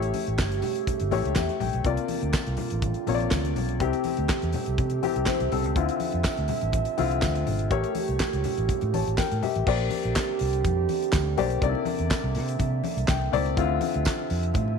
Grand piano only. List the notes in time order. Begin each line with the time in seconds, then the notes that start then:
Already playing: A3 E4 G4 C#5
1.11 A3 E4 G4 C#5
1.36 G4 E5
1.61 G5
1.85 C3 A#3 F4 D5
3.07 C3 A#3 F4 C#5
3.15 D5
3.80 C3 C4 E4 G4
5.02 C3 C4 E4 G4
5.28 E4 C5
5.52 C4 A4
5.76 D3 C4 E4 F4
6.97 D3 C4 E4 F4
7.71 A3 G4 A#4 C#5
8.94 C#5 A5
9.18 A#4 G5
9.43 G4 E5
9.67 A#3 G4 C5 D5
11.37 A#3 G4 C5 D5
11.62 C3 A#3 D#4 D5
11.69 E4
13.09 G5
13.32 C3 A#3 E4 C5 D5
13.57 D3 C4 E4 F4